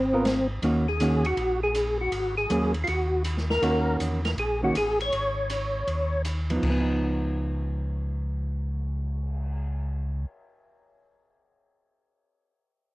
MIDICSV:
0, 0, Header, 1, 6, 480
1, 0, Start_track
1, 0, Tempo, 375235
1, 805, Time_signature, 4, 2, 24, 8
1, 16562, End_track
2, 0, Start_track
2, 0, Title_t, "Tonewheel organ"
2, 0, Program_c, 0, 16
2, 0, Note_on_c, 0, 60, 72
2, 606, Note_off_c, 0, 60, 0
2, 1133, Note_on_c, 0, 68, 76
2, 1613, Note_on_c, 0, 66, 84
2, 1618, Note_off_c, 0, 68, 0
2, 2050, Note_off_c, 0, 66, 0
2, 2090, Note_on_c, 0, 68, 81
2, 2528, Note_off_c, 0, 68, 0
2, 2569, Note_on_c, 0, 66, 67
2, 3007, Note_off_c, 0, 66, 0
2, 3038, Note_on_c, 0, 68, 84
2, 3480, Note_off_c, 0, 68, 0
2, 3631, Note_on_c, 0, 65, 53
2, 3683, Note_off_c, 0, 65, 0
2, 3695, Note_on_c, 0, 66, 80
2, 4131, Note_off_c, 0, 66, 0
2, 4486, Note_on_c, 0, 70, 71
2, 5076, Note_off_c, 0, 70, 0
2, 5440, Note_on_c, 0, 70, 78
2, 5512, Note_off_c, 0, 70, 0
2, 5619, Note_on_c, 0, 68, 81
2, 5901, Note_off_c, 0, 68, 0
2, 5938, Note_on_c, 0, 66, 75
2, 6077, Note_off_c, 0, 66, 0
2, 6103, Note_on_c, 0, 68, 78
2, 6383, Note_off_c, 0, 68, 0
2, 6417, Note_on_c, 0, 73, 73
2, 7958, Note_off_c, 0, 73, 0
2, 16562, End_track
3, 0, Start_track
3, 0, Title_t, "Hollow-body jazz guitar"
3, 0, Program_c, 1, 26
3, 169, Note_on_c, 1, 59, 58
3, 179, Note_on_c, 1, 65, 55
3, 189, Note_on_c, 1, 70, 67
3, 314, Note_off_c, 1, 59, 0
3, 318, Note_off_c, 1, 65, 0
3, 323, Note_off_c, 1, 70, 0
3, 808, Note_on_c, 1, 51, 50
3, 818, Note_on_c, 1, 58, 47
3, 824, Note_on_c, 1, 61, 55
3, 830, Note_on_c, 1, 66, 57
3, 1089, Note_off_c, 1, 51, 0
3, 1094, Note_off_c, 1, 58, 0
3, 1097, Note_off_c, 1, 61, 0
3, 1100, Note_off_c, 1, 66, 0
3, 1287, Note_on_c, 1, 51, 59
3, 1294, Note_on_c, 1, 58, 47
3, 1301, Note_on_c, 1, 61, 57
3, 1306, Note_on_c, 1, 66, 53
3, 1568, Note_off_c, 1, 51, 0
3, 1571, Note_off_c, 1, 58, 0
3, 1575, Note_off_c, 1, 61, 0
3, 1577, Note_off_c, 1, 66, 0
3, 3198, Note_on_c, 1, 54, 47
3, 3207, Note_on_c, 1, 58, 56
3, 3218, Note_on_c, 1, 61, 53
3, 3480, Note_off_c, 1, 54, 0
3, 3485, Note_off_c, 1, 58, 0
3, 3490, Note_off_c, 1, 61, 0
3, 4633, Note_on_c, 1, 51, 55
3, 4641, Note_on_c, 1, 58, 54
3, 4645, Note_on_c, 1, 61, 56
3, 4649, Note_on_c, 1, 66, 63
3, 5365, Note_off_c, 1, 51, 0
3, 5369, Note_off_c, 1, 58, 0
3, 5371, Note_off_c, 1, 61, 0
3, 5373, Note_off_c, 1, 66, 0
3, 5921, Note_on_c, 1, 51, 54
3, 5928, Note_on_c, 1, 58, 55
3, 5929, Note_on_c, 1, 61, 59
3, 5934, Note_on_c, 1, 66, 60
3, 6062, Note_off_c, 1, 51, 0
3, 6066, Note_off_c, 1, 58, 0
3, 6066, Note_off_c, 1, 61, 0
3, 6069, Note_off_c, 1, 66, 0
3, 8318, Note_on_c, 1, 53, 52
3, 8329, Note_on_c, 1, 59, 50
3, 8338, Note_on_c, 1, 63, 49
3, 8375, Note_off_c, 1, 53, 0
3, 8390, Note_on_c, 1, 53, 45
3, 8553, Note_off_c, 1, 59, 0
3, 8568, Note_on_c, 1, 59, 51
3, 8694, Note_off_c, 1, 63, 0
3, 8709, Note_on_c, 1, 63, 49
3, 13080, Note_off_c, 1, 53, 0
3, 13258, Note_off_c, 1, 59, 0
3, 13399, Note_off_c, 1, 63, 0
3, 16562, End_track
4, 0, Start_track
4, 0, Title_t, "Tonewheel organ"
4, 0, Program_c, 2, 16
4, 0, Note_on_c, 2, 32, 90
4, 757, Note_off_c, 2, 32, 0
4, 796, Note_on_c, 2, 39, 76
4, 1708, Note_off_c, 2, 39, 0
4, 1752, Note_on_c, 2, 34, 78
4, 2665, Note_off_c, 2, 34, 0
4, 2713, Note_on_c, 2, 32, 71
4, 3160, Note_off_c, 2, 32, 0
4, 3196, Note_on_c, 2, 39, 68
4, 3641, Note_off_c, 2, 39, 0
4, 3685, Note_on_c, 2, 39, 83
4, 4590, Note_off_c, 2, 39, 0
4, 4633, Note_on_c, 2, 39, 69
4, 5079, Note_off_c, 2, 39, 0
4, 5116, Note_on_c, 2, 40, 68
4, 5560, Note_off_c, 2, 40, 0
4, 5589, Note_on_c, 2, 34, 78
4, 6037, Note_off_c, 2, 34, 0
4, 6081, Note_on_c, 2, 33, 70
4, 6524, Note_off_c, 2, 33, 0
4, 6558, Note_on_c, 2, 32, 76
4, 7468, Note_off_c, 2, 32, 0
4, 7515, Note_on_c, 2, 39, 77
4, 8428, Note_off_c, 2, 39, 0
4, 8478, Note_on_c, 2, 37, 75
4, 13116, Note_off_c, 2, 37, 0
4, 16562, End_track
5, 0, Start_track
5, 0, Title_t, "Cymbal swell"
5, 8798, Note_on_c, 9, 59, 38
5, 12228, Note_off_c, 9, 59, 0
5, 16562, End_track
6, 0, Start_track
6, 0, Title_t, "Drums"
6, 324, Note_on_c, 9, 44, 57
6, 324, Note_on_c, 9, 51, 59
6, 328, Note_on_c, 9, 38, 64
6, 452, Note_off_c, 9, 44, 0
6, 452, Note_off_c, 9, 51, 0
6, 456, Note_off_c, 9, 38, 0
6, 802, Note_on_c, 9, 51, 56
6, 930, Note_off_c, 9, 51, 0
6, 1281, Note_on_c, 9, 44, 52
6, 1281, Note_on_c, 9, 51, 61
6, 1409, Note_off_c, 9, 44, 0
6, 1409, Note_off_c, 9, 51, 0
6, 1595, Note_on_c, 9, 51, 39
6, 1723, Note_off_c, 9, 51, 0
6, 1756, Note_on_c, 9, 51, 46
6, 1883, Note_off_c, 9, 51, 0
6, 2236, Note_on_c, 9, 44, 52
6, 2236, Note_on_c, 9, 51, 64
6, 2363, Note_off_c, 9, 44, 0
6, 2363, Note_off_c, 9, 51, 0
6, 2712, Note_on_c, 9, 51, 56
6, 2840, Note_off_c, 9, 51, 0
6, 3197, Note_on_c, 9, 44, 57
6, 3197, Note_on_c, 9, 51, 61
6, 3325, Note_off_c, 9, 44, 0
6, 3325, Note_off_c, 9, 51, 0
6, 3508, Note_on_c, 9, 51, 39
6, 3636, Note_off_c, 9, 51, 0
6, 3676, Note_on_c, 9, 51, 49
6, 3804, Note_off_c, 9, 51, 0
6, 4153, Note_on_c, 9, 44, 47
6, 4153, Note_on_c, 9, 51, 67
6, 4281, Note_off_c, 9, 44, 0
6, 4281, Note_off_c, 9, 51, 0
6, 4319, Note_on_c, 9, 38, 26
6, 4447, Note_off_c, 9, 38, 0
6, 4483, Note_on_c, 9, 38, 42
6, 4611, Note_off_c, 9, 38, 0
6, 4639, Note_on_c, 9, 51, 55
6, 4767, Note_off_c, 9, 51, 0
6, 5118, Note_on_c, 9, 44, 56
6, 5118, Note_on_c, 9, 51, 57
6, 5245, Note_off_c, 9, 44, 0
6, 5245, Note_off_c, 9, 51, 0
6, 5434, Note_on_c, 9, 51, 37
6, 5438, Note_on_c, 9, 38, 37
6, 5562, Note_off_c, 9, 51, 0
6, 5566, Note_off_c, 9, 38, 0
6, 5601, Note_on_c, 9, 51, 46
6, 5729, Note_off_c, 9, 51, 0
6, 6078, Note_on_c, 9, 44, 53
6, 6078, Note_on_c, 9, 51, 61
6, 6206, Note_off_c, 9, 44, 0
6, 6206, Note_off_c, 9, 51, 0
6, 6400, Note_on_c, 9, 51, 39
6, 6528, Note_off_c, 9, 51, 0
6, 6554, Note_on_c, 9, 51, 48
6, 6682, Note_off_c, 9, 51, 0
6, 7032, Note_on_c, 9, 44, 50
6, 7032, Note_on_c, 9, 51, 60
6, 7160, Note_off_c, 9, 44, 0
6, 7160, Note_off_c, 9, 51, 0
6, 7516, Note_on_c, 9, 51, 41
6, 7644, Note_off_c, 9, 51, 0
6, 7993, Note_on_c, 9, 44, 57
6, 7993, Note_on_c, 9, 51, 58
6, 8121, Note_off_c, 9, 44, 0
6, 8121, Note_off_c, 9, 51, 0
6, 8313, Note_on_c, 9, 51, 40
6, 8441, Note_off_c, 9, 51, 0
6, 8478, Note_on_c, 9, 49, 52
6, 8479, Note_on_c, 9, 36, 51
6, 8606, Note_off_c, 9, 36, 0
6, 8606, Note_off_c, 9, 49, 0
6, 16562, End_track
0, 0, End_of_file